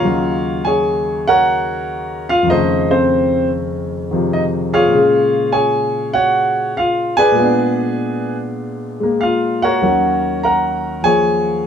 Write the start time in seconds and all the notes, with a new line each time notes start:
Already playing: F4 A#4 C#5 F5
0.01 D#2 C#3 F#3
0.06 D#4
0.65 G#4 C#5 G#5
1.27 F#4 A#4 C#5 F#5
2.29 F4 F5
2.43 F2
2.47 D#3 A3 D#4 A4 C5 D#5
2.54 C#3
2.91 C4 A4 C5
4.11 C3 D#3 F3
4.33 D#4 D#5
4.73 F4 G#4 C#5 F5
4.87 A#2
4.92 C#3 G#3
5.52 G#4 C#5 G#5
6.13 F#4 C#5 F#5
6.77 F4 F5
7.17 G#4 B4 D5 G#5
7.32 A#2 G#3
7.39 B3 D4
9.00 G#3 A#3
9.21 F4 F5
9.62 F#4 A#4 C#5 F#5
9.82 D#2 D#3 F#3 C#4
10.43 A#4 F#5 A#5
11.02 F3 A#3 G#4 C#5 G#5